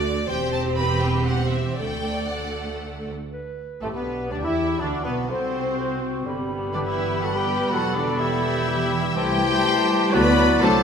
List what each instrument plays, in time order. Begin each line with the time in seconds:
Already playing: double bass section D2, cello section D3, viola section A3 F#4, violin section D5
0.30 double bass section E1, cello section E2, viola section C4 G4, violin section C5 G5
0.53 violin section A5
0.77 violin section B4 B5
1.02 violin section G5
1.27 violin section C5 F#5
1.53 violin section E5
1.79 cello section D2, double bass section D2, viola section A3 A4, violin section D5 G5
2.30 viola section A3 A4, violin section F#5
3.33 clarinet B4
3.81 double bass section A1, cello section A2, violin section A3 A4, viola section A3, bassoon A3, french horn section A3, cor anglais A3, trumpet section C4, clarinet G4, flute A4
3.94 double bass section B1, cello section B2, violin section B3 B4, viola section B3, french horn section B3, bassoon B3, cor anglais B3, trumpet section D4, flute B4
4.30 double bass section D2, cello section D3, viola section D4, violin section D4 D5, bassoon D4, cor anglais D4, french horn section D4, clarinet G4, trumpet section G4, flute D5
4.43 double bass section E2, cello section E3, viola section E4, violin section E4 E5, bassoon E4, cor anglais E4, french horn section E4, trumpet section G4, flute E5
4.79 double bass section D2, cello section D3, bassoon D4, viola section D4, cor anglais D4, violin section D4 D5, french horn section D4, clarinet F#4, trumpet section F#4, flute D5
5.04 double bass section B1, cello section B2, bassoon B3, violin section B3 B4, cor anglais B3, viola section B3, french horn section B3, trumpet section D4, flute B4
5.28 double bass section C2, cello section C3, viola section C4, bassoon C4, cor anglais C4, violin section C4 C5, french horn section C4, trumpet section F#4, clarinet A4, flute C5
5.78 clarinet F#4
6.26 double bass section G1, viola section D3 B3, bassoon G3, french horn section B3 G4, clarinet G4, flute B5
6.38 viola section G3
6.50 viola section D3
6.63 viola section G3
6.74 cello section D3, viola section D3, violin section D4 D5, cor anglais D4, trumpet section G4, clarinet B4
6.86 cello section E3, viola section G3, violin section E4 E5, cor anglais E4, trumpet section G4
6.99 viola section D3
7.11 viola section G3
7.22 viola section D3, cello section F#3, cor anglais F#4, violin section F#4 F#5, trumpet section A4
7.34 cello section G3, viola section G3, violin section G4 G5, cor anglais G4, trumpet section B4
7.47 viola section D3
7.59 viola section G3
7.70 double bass section E1, viola section E3, cello section F#3, cor anglais F#4, violin section F#4 F#5, trumpet section A4, clarinet A4
7.83 viola section G3
7.95 cello section D3, viola section E3, cor anglais D4, violin section D4 D5, trumpet section F#4
8.08 viola section G3
8.19 cello section E3, viola section E3, violin section E4 E5, cor anglais E4, trumpet section G4
8.31 viola section G3
8.44 viola section E3
8.56 viola section G3
8.68 viola section E3, clarinet G4
8.80 viola section G3
8.91 viola section E3
9.03 viola section G3
9.15 double bass section C2, viola section E3 A3, bassoon E3, cello section G3, french horn section A3 E4, clarinet E4, violin section G4 G5, cor anglais G4, trumpet section C5, flute A5
9.66 clarinet G4
10.12 double bass section D2, bassoon F#3, french horn section F#3, viola section F#3 A3, cello section B3, clarinet F#4, cor anglais B4, violin section B4 B5, trumpet section D5
10.61 double bass section C2, viola section F#3 D4, cello section A3, cor anglais A4, clarinet A4, violin section A4 A5, trumpet section C5, flute D6